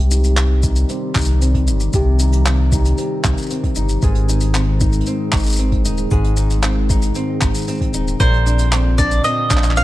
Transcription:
0.00 0.85 C2 medium
0.00 1.93 C3 medium
0.00 8.16 D#3 medium
0.00 3.99 G3 medium
0.00 9.84 C4 medium
0.00 1.94 G4 medium
0.00 3.99 G4 medium
0.11 0.63 D#4 medium
0.11 closed hi-hat soft
0.11 shaker medium
0.24 closed hi-hat soft
0.24 shaker soft
0.37 0.89 C4 medium
0.37 clap medium
0.37 closed hi-hat medium
0.37 shaker soft
0.63 1.15 D#4 medium
0.63 kick medium
0.63 shaker medium
0.76 shaker soft
0.89 1.41 C4 medium
0.89 closed hi-hat medium
0.89 shaker soft
1.15 1.70 C2 medium
1.15 1.67 D#4 medium
1.15 kick loud
1.15 clap medium
1.15 shaker soft
1.18 shaker soft
1.21 shaker medium
1.25 closed hi-hat soft
1.25 shaker medium
1.41 2.46 C4 medium
1.41 closed hi-hat medium
1.41 shaker medium
1.55 kick medium
1.55 closed hi-hat medium
1.68 1.88 G1 medium
1.68 2.20 D#4 medium
1.68 shaker medium
1.80 shaker medium
1.93 2.94 C2 medium
1.93 4.03 C3 medium
1.93 4.03 G4 medium
1.93 kick loud
1.93 closed hi-hat medium
1.93 shaker soft
2.19 2.72 D#4 medium
2.19 closed hi-hat soft
2.19 shaker medium
2.32 closed hi-hat medium
2.32 shaker medium
2.46 2.98 C4 medium
2.46 clap medium
2.46 closed hi-hat medium
2.46 shaker soft
2.72 3.24 D#4 medium
2.72 kick loud
2.72 shaker medium
2.85 closed hi-hat medium
2.85 shaker medium
2.98 3.50 C4 medium
2.98 closed hi-hat medium
2.98 shaker soft
3.24 3.35 C2 medium
3.24 3.76 D#4 medium
3.24 kick loud
3.24 clap medium
3.24 shaker medium
3.37 closed hi-hat soft
3.37 shaker soft
3.42 shaker soft
3.46 shaker soft
3.50 4.54 C4 medium
3.50 closed hi-hat medium
3.50 shaker soft
3.64 kick medium
3.64 closed hi-hat medium
3.75 3.97 G1 loud
3.75 4.28 D#4 medium
3.75 shaker medium
3.89 shaker medium
4.02 5.02 G#1 medium
4.02 6.10 G#2 medium
4.02 8.16 G#3 medium
4.02 8.16 G#4 medium
4.02 6.11 G#4 medium
4.02 kick loud
4.02 closed hi-hat medium
4.02 shaker soft
4.15 closed hi-hat medium
4.28 4.80 D#4 medium
4.28 closed hi-hat soft
4.28 shaker medium
4.41 closed hi-hat medium
4.41 shaker medium
4.55 5.07 C4 medium
4.55 clap medium
4.55 closed hi-hat medium
4.55 shaker soft
4.80 5.32 D#4 medium
4.80 kick loud
4.80 shaker medium
4.93 shaker soft
5.01 closed hi-hat medium
5.06 5.58 C4 medium
5.06 closed hi-hat medium
5.06 shaker soft
5.32 5.87 G#1 medium
5.32 5.84 D#4 medium
5.32 kick loud
5.32 clap medium
5.32 shaker soft
5.37 shaker soft
5.40 shaker soft
5.43 closed hi-hat medium
5.43 shaker soft
5.46 shaker medium
5.50 shaker medium
5.52 shaker medium
5.56 shaker medium
5.58 6.63 C4 medium
5.58 closed hi-hat medium
5.58 shaker soft
5.72 kick medium
5.72 closed hi-hat medium
5.85 6.05 D#1 medium
5.85 6.36 D#4 medium
5.85 shaker medium
5.98 shaker medium
6.11 7.11 G#1 medium
6.11 8.20 G#2 medium
6.11 8.20 G#4 medium
6.11 kick loud
6.11 closed hi-hat medium
6.11 shaker soft
6.24 closed hi-hat medium
6.37 6.89 D#4 medium
6.37 closed hi-hat soft
6.37 shaker medium
6.50 closed hi-hat medium
6.50 shaker medium
6.63 7.15 C4 medium
6.63 clap medium
6.63 closed hi-hat medium
6.63 shaker medium
6.89 7.40 D#4 medium
6.89 kick medium
6.89 closed hi-hat soft
6.89 shaker medium
7.02 closed hi-hat soft
7.02 shaker medium
7.15 7.68 C4 medium
7.15 closed hi-hat medium
7.15 shaker soft
7.41 7.52 G#1 medium
7.41 7.93 D#4 medium
7.41 kick loud
7.41 clap medium
7.41 shaker medium
7.54 closed hi-hat medium
7.54 shaker medium
7.58 shaker soft
7.61 shaker soft
7.64 closed hi-hat medium
7.64 shaker soft
7.68 8.49 C4 medium
7.68 shaker soft
7.71 shaker soft
7.74 shaker soft
7.78 kick medium
7.78 closed hi-hat medium
7.78 shaker soft
7.94 8.14 D#1 loud
7.94 8.25 D#4 medium
7.94 shaker medium
8.08 shaker medium
8.20 9.20 A#1 medium
8.20 9.84 A#2 medium
8.20 9.84 D3 medium
8.20 9.84 A#3 medium
8.20 9.84 F4 medium
8.20 9.84 A#4 medium
8.20 8.94 C5 medium
8.20 kick loud
8.20 closed hi-hat medium
8.20 shaker soft
8.34 closed hi-hat medium
8.46 8.98 D4 medium
8.46 closed hi-hat soft
8.46 shaker medium
8.59 closed hi-hat medium
8.59 shaker medium
8.72 9.23 C4 medium
8.72 clap medium
8.72 closed hi-hat medium
8.72 shaker medium
8.98 9.50 D4 medium
8.98 9.23 D5 medium
8.98 kick medium
8.98 shaker medium
9.11 closed hi-hat soft
9.11 shaker medium
9.24 9.75 C4 medium
9.24 9.73 D#5 medium
9.24 closed hi-hat medium
9.24 shaker soft
9.50 9.84 A#1 medium
9.50 9.84 D4 medium
9.50 kick loud
9.50 clap medium
9.50 shaker medium
9.57 clap soft
9.63 clap soft
9.63 closed hi-hat medium
9.63 shaker medium
9.71 clap soft
9.76 9.84 C4 medium
9.76 9.84 F5 loud
9.76 closed hi-hat medium
9.76 shaker soft

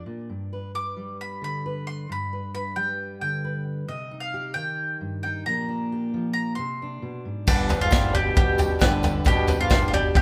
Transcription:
0.00 3.12 D4 soft
0.00 0.52 G4 soft
0.06 0.29 A#2 soft
0.29 2.06 G2 soft
0.53 0.74 B4 soft
0.75 1.64 B4 soft
0.75 1.16 D6 medium
0.97 2.76 G3 soft
1.21 1.43 B5 medium
1.42 2.06 D3 soft
1.42 1.87 B5 medium
1.66 2.07 B4 medium
1.87 2.07 C6 medium
2.09 3.86 G2 soft
2.09 2.53 B5 medium
2.33 2.53 B4 soft
2.55 3.43 B4 soft
2.55 2.75 B5 medium
2.76 4.55 G3 soft
2.76 3.18 G5 medium
3.21 3.86 D3 soft
3.21 3.63 G5 medium
3.45 3.86 B4 medium
3.89 4.56 C3 medium
3.89 4.20 D#5 medium
4.11 5.23 D#4 soft
4.20 4.56 F5 medium
4.34 5.49 G4 medium
4.54 5.45 D#3 soft
4.54 4.97 G5 medium
5.01 5.43 G2 soft
5.23 5.44 D#4 soft
5.23 5.46 G5 medium
5.46 6.58 A#2 medium
5.46 6.13 F3 soft
5.46 6.56 A#3 soft
5.46 5.68 D4 soft
5.46 5.91 G4 soft
5.46 6.32 A#5 medium
5.69 6.56 D4 soft
5.92 6.56 G4 soft
6.14 6.56 F3 medium
6.33 6.55 A#5 medium
6.55 7.02 C3 medium
6.55 7.20 C6 medium
6.82 7.46 D4 soft
7.02 7.25 B2 soft
7.25 7.48 G#2 soft
7.47 7.77 G1 loud
7.47 7.70 G2 medium
7.47 7.79 G2 medium
7.47 10.22 B2 medium
7.47 7.70 D3 medium
7.47 10.22 D3 medium
7.47 10.22 G3 medium
7.47 7.70 G3 medium
7.47 7.69 B3 medium
7.47 10.22 D4 medium
7.47 7.81 D4 medium
7.47 7.69 D4 medium
7.47 10.22 G4 medium
7.47 7.90 G4 medium
7.47 7.68 G4 medium
7.47 kick loud
7.47 floor tom medium
7.47 crash loud
7.47 tambourine medium
7.69 7.91 G3 soft
7.69 7.91 B3 soft
7.69 7.92 D4 medium
7.69 7.92 G4 medium
7.69 8.59 B4 medium
7.69 floor tom medium
7.69 tambourine medium
7.81 7.91 G1 medium
7.81 8.13 G#2 medium
7.81 8.14 F4 medium
7.91 8.32 G1 loud
7.91 8.14 G2 medium
7.91 8.14 D3 medium
7.91 8.14 G3 medium
7.91 8.13 B3 medium
7.91 8.12 D4 medium
7.91 8.35 G4 medium
7.91 8.11 G4 medium
7.91 kick loud
7.91 snare loud
7.91 floor tom medium
7.91 tambourine loud
8.12 8.36 B2 medium
8.12 8.34 G3 soft
8.12 8.34 B3 soft
8.12 8.35 D4 medium
8.12 8.35 G4 medium
8.12 8.35 G4 loud
8.12 9.04 D5 medium
8.12 floor tom medium
8.35 8.76 G1 loud
8.35 8.58 G3 medium
8.35 8.58 B3 medium
8.35 8.57 D4 medium
8.35 8.57 G4 medium
8.35 8.81 G4 medium
8.35 8.83 G4 loud
8.35 kick loud
8.35 floor tom medium
8.40 8.80 B2 medium
8.58 8.78 G3 soft
8.58 8.79 B3 medium
8.58 8.79 D4 medium
8.58 8.80 G4 medium
8.58 9.49 G5 medium
8.58 floor tom medium
8.58 tambourine medium
8.79 9.21 G1 loud
8.79 9.03 G2 medium
8.79 9.03 D3 medium
8.79 9.24 D3 medium
8.79 9.03 G3 medium
8.79 9.02 B3 medium
8.79 9.02 D4 medium
8.79 9.01 G4 medium
8.79 9.25 G4 medium
8.79 9.28 B4 loud
8.79 kick loud
8.79 snare loud
8.79 floor tom medium
8.79 tambourine medium
9.02 9.24 G3 soft
9.02 9.24 B3 soft
9.02 9.25 D4 medium
9.02 9.25 G4 medium
9.02 9.48 B4 medium
9.02 floor tom medium
9.02 tambourine medium
9.25 9.55 G1 loud
9.25 9.48 G2 medium
9.25 9.58 B2 loud
9.25 9.48 D3 medium
9.25 9.48 G3 medium
9.25 9.47 B3 medium
9.25 9.47 D4 medium
9.25 9.46 G4 medium
9.25 9.70 G4 loud
9.25 9.60 G4 loud
9.25 kick loud
9.25 floor tom medium
9.25 tambourine medium
9.47 9.70 G3 soft
9.47 9.70 B3 soft
9.47 9.70 D4 medium
9.47 9.70 G4 medium
9.47 10.22 B4 medium
9.47 floor tom medium
9.47 tambourine medium
9.59 9.69 G1 medium
9.59 9.85 G#2 medium
9.59 9.87 F4 loud
9.70 10.10 G1 medium
9.70 9.93 G2 medium
9.70 9.93 D3 medium
9.70 9.93 G3 medium
9.70 9.92 B3 medium
9.70 9.91 D4 medium
9.70 10.15 G4 medium
9.70 9.91 G4 medium
9.70 kick loud
9.70 snare loud
9.70 floor tom loud
9.70 tambourine medium
9.86 9.92 G#2 medium
9.86 9.93 F4 medium
9.92 10.13 B2 medium
9.92 10.13 G3 soft
9.92 10.13 B3 soft
9.92 10.14 D4 medium
9.92 10.15 G4 medium
9.92 10.15 G4 loud
9.92 10.22 D5 medium
9.92 floor tom medium
10.14 10.22 G1 loud
10.14 10.22 B2 medium
10.14 10.22 G3 medium
10.14 10.22 B3 medium
10.14 10.22 D4 medium
10.14 10.22 G4 medium
10.14 10.22 G4 loud
10.14 kick loud
10.14 floor tom medium

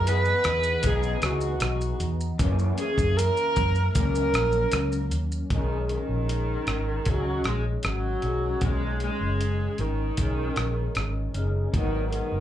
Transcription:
0.00 0.33 F#2 medium
0.04 0.81 E3 medium
0.04 0.82 B3 medium
0.04 0.84 D#4 medium
0.04 0.85 G#4 medium
0.04 0.87 B4 loud
0.04 closed hi-hat medium
0.04 shaker medium
0.25 shaker soft
0.44 0.76 E2 medium
0.44 cross-stick medium
0.44 closed hi-hat medium
0.44 shaker soft
0.63 shaker medium
0.81 1.15 B1 loud
0.81 2.39 E3 medium
0.81 2.39 B3 medium
0.81 2.40 D#4 medium
0.81 kick loud
0.81 closed hi-hat medium
0.81 shaker medium
0.86 1.26 G#4 loud
0.86 2.41 G#4 medium
1.03 shaker medium
1.22 1.54 C#2 medium
1.22 2.01 F#4 medium
1.22 cross-stick loud
1.22 closed hi-hat soft
1.22 shaker soft
1.41 shaker medium
1.60 1.93 B1 medium
1.60 cross-stick loud
1.60 closed hi-hat medium
1.60 shaker medium
1.81 shaker medium
2.00 2.31 E2 medium
2.00 closed hi-hat soft
2.00 shaker medium
2.20 shaker medium
2.38 2.78 F#2 medium
2.38 2.71 F#2 loud
2.38 2.78 E3 medium
2.38 2.78 A#3 medium
2.38 2.76 C#4 loud
2.38 kick loud
2.38 closed hi-hat medium
2.38 shaker medium
2.59 shaker medium
2.77 3.96 E3 soft
2.77 3.95 A#3 soft
2.77 3.98 C#4 soft
2.77 3.19 G#4 loud
2.77 closed hi-hat medium
2.77 shaker medium
2.98 3.29 F#2 medium
2.98 kick medium
2.98 shaker medium
3.17 3.94 A#4 loud
3.17 closed hi-hat medium
3.17 shaker medium
3.37 shaker medium
3.56 3.88 F#2 loud
3.56 kick medium
3.56 closed hi-hat soft
3.56 shaker soft
3.75 shaker medium
3.94 4.26 C#2 loud
3.94 5.50 F#2 medium
3.94 5.52 A#3 medium
3.94 5.07 A#4 loud
3.94 kick loud
3.94 closed hi-hat medium
3.94 shaker medium
3.99 5.54 C#4 medium
4.15 shaker medium
4.33 4.65 A#1 medium
4.33 cross-stick loud
4.33 closed hi-hat soft
4.33 shaker soft
4.52 shaker medium
4.72 5.11 C#2 medium
4.72 cross-stick loud
4.72 closed hi-hat medium
4.72 shaker medium
4.92 shaker medium
5.11 5.43 D#2 medium
5.11 closed hi-hat medium
5.11 shaker medium
5.32 shaker medium
5.50 5.97 B1 medium
5.50 7.06 D#3 medium
5.50 5.89 D#3 medium
5.50 7.08 G#3 medium
5.50 kick loud
5.50 closed hi-hat medium
5.54 7.08 C#4 medium
5.89 7.11 D#3 medium
5.89 closed hi-hat soft
6.09 6.56 A#1 medium
6.29 closed hi-hat medium
6.67 6.98 G#1 medium
6.67 cross-stick medium
6.67 closed hi-hat soft
7.05 7.38 C#2 medium
7.05 8.25 D#3 medium
7.05 8.24 G#3 medium
7.05 8.21 C#4 medium
7.05 kick medium
7.05 closed hi-hat medium
7.10 7.46 F#3 medium
7.44 7.76 A#1 medium
7.44 7.64 G#3 medium
7.44 cross-stick medium
7.44 closed hi-hat soft
7.83 8.15 G#1 medium
7.83 8.65 F#3 medium
7.83 cross-stick medium
7.83 closed hi-hat medium
8.22 8.54 B1 medium
8.22 8.61 D#3 soft
8.22 8.63 G#3 soft
8.22 8.61 C#4 soft
8.22 closed hi-hat soft
8.60 9.09 B1 medium
8.60 10.17 B2 medium
8.60 10.18 D#3 medium
8.60 9.02 G#3 medium
8.60 10.19 G#3 medium
8.60 kick loud
8.60 closed hi-hat medium
8.66 10.19 C#4 medium
9.00 9.82 G#3 medium
9.00 closed hi-hat soft
9.21 9.67 F#1 medium
9.41 closed hi-hat medium
9.78 10.10 G#1 medium
9.78 11.35 D#3 medium
9.78 closed hi-hat soft
10.17 10.49 B1 medium
10.17 11.37 D#3 medium
10.17 11.35 G#3 medium
10.17 11.33 C#4 medium
10.17 kick medium
10.17 closed hi-hat medium
10.56 10.88 A#1 medium
10.56 cross-stick medium
10.56 closed hi-hat soft
10.95 11.27 G#1 medium
10.95 cross-stick medium
10.95 closed hi-hat medium
11.34 11.66 F#1 medium
11.34 11.74 D#3 soft
11.34 11.74 G#3 soft
11.34 11.73 C#4 soft
11.34 closed hi-hat soft
11.72 12.20 G#1 medium
11.72 12.40 G#2 medium
11.72 12.40 F#3 medium
11.72 kick loud
11.72 closed hi-hat medium
11.76 12.11 D#3 medium
11.76 12.40 B3 medium
11.76 12.40 D#4 medium
12.13 12.40 D#3 medium
12.13 closed hi-hat soft
12.32 12.40 F#1 medium

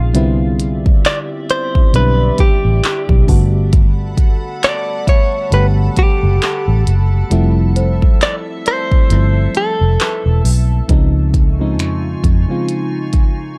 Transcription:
0.00 0.15 A#1 medium
0.00 0.16 F3 medium
0.00 0.16 G#3 medium
0.00 0.15 C4 medium
0.00 0.17 C#4 medium
0.00 0.17 D#4 medium
0.00 0.11 F4 medium
0.00 0.11 G#4 medium
0.00 0.13 F5 medium
0.14 0.86 C2 loud
0.14 1.74 D3 loud
0.14 1.74 G3 medium
0.14 1.75 B3 medium
0.14 1.75 C4 medium
0.14 1.75 E4 loud
0.14 3.25 G4 medium
0.14 3.25 D5 medium
0.14 3.25 E5 medium
0.14 closed hi-hat medium
0.60 closed hi-hat medium
0.86 kick medium
1.05 1.18 D5 loud
1.05 clap loud
1.05 closed hi-hat medium
1.50 1.95 C5 loud
1.50 closed hi-hat medium
1.75 kick medium
1.93 2.29 B1 loud
1.93 3.26 D3 medium
1.93 3.26 G3 medium
1.93 3.27 B3 medium
1.93 3.29 C4 medium
1.93 3.29 D4 medium
1.93 2.41 B4 loud
1.93 closed hi-hat medium
2.38 3.25 G4 medium
2.38 kick medium
2.38 closed hi-hat medium
2.65 2.80 A1 medium
2.84 clap loud
2.84 closed hi-hat medium
3.09 3.24 B1 medium
3.09 kick loud
3.27 4.35 G1 medium
3.27 4.87 D3 medium
3.27 4.88 G3 medium
3.27 4.88 A3 medium
3.27 4.88 B3 medium
3.27 4.88 F#4 medium
3.27 10.85 A4 medium
3.27 7.27 F#5 medium
3.27 10.85 A5 medium
3.27 6.13 A5 soft
3.27 7.27 B5 loud
3.27 kick loud
3.27 open hi-hat medium
3.73 kick loud
3.73 closed hi-hat medium
4.17 kick medium
4.17 closed hi-hat medium
4.63 5.09 D5 loud
4.63 clap loud
4.63 closed hi-hat medium
5.07 5.53 C#5 loud
5.07 7.72 E5 medium
5.07 kick medium
5.07 closed hi-hat medium
5.51 5.88 G1 loud
5.51 7.11 D3 medium
5.51 7.12 G3 medium
5.51 7.12 A3 medium
5.51 7.12 B3 medium
5.51 7.12 G4 medium
5.51 5.66 B4 loud
5.51 closed hi-hat medium
5.97 6.83 G4 medium
5.97 kick medium
5.97 closed hi-hat medium
6.23 6.38 F#1 medium
6.42 clap loud
6.42 closed hi-hat medium
6.68 6.83 A1 medium
6.87 7.22 F#1 medium
6.87 closed hi-hat medium
7.30 8.02 F1 loud
7.30 8.90 F3 medium
7.30 8.91 G3 medium
7.30 8.91 A3 medium
7.30 8.91 C4 medium
7.30 8.92 E4 loud
7.30 10.86 E5 medium
7.30 10.86 E6 loud
7.30 closed hi-hat medium
7.76 10.61 C5 medium
7.76 closed hi-hat medium
8.02 kick medium
8.21 8.35 D5 loud
8.21 clap loud
8.21 closed hi-hat medium
8.66 9.57 C5 loud
8.66 11.30 D5 medium
8.66 closed hi-hat medium
8.92 kick medium
9.09 9.46 G1 loud
9.09 10.70 F3 medium
9.09 10.70 G3 medium
9.09 10.70 A3 medium
9.09 10.70 C4 medium
9.09 10.71 E4 medium
9.09 closed hi-hat medium
9.55 10.42 A4 medium
9.55 closed hi-hat medium
9.81 9.96 F1 medium
10.00 11.30 B4 medium
10.00 clap loud
10.00 closed hi-hat medium
10.26 10.41 E1 medium
10.45 10.80 B1 medium
10.45 open hi-hat medium
10.88 11.79 C#2 medium
10.88 11.50 C#3 medium
10.88 11.50 F3 medium
10.88 11.50 G#3 medium
10.88 11.50 C4 medium
10.88 13.58 D#4 medium
10.88 11.51 D#4 loud
10.88 13.58 F4 medium
10.88 13.58 G#5 medium
10.88 13.58 C#6 medium
10.88 kick loud
10.88 closed hi-hat medium
11.34 kick medium
11.34 closed hi-hat medium
11.59 12.36 C#3 medium
11.59 12.36 F3 medium
11.59 12.36 G#3 medium
11.59 12.37 C4 medium
11.59 12.37 D#4 loud
11.79 12.14 F2 loud
11.79 finger snap loud
11.79 closed hi-hat medium
12.24 12.44 F2 medium
12.24 kick medium
12.24 closed hi-hat medium
12.49 13.58 C#3 medium
12.49 13.58 F3 medium
12.49 13.58 G#3 medium
12.49 13.58 C4 medium
12.49 13.58 F4 medium
12.69 closed hi-hat medium
13.13 kick medium
13.13 closed hi-hat medium

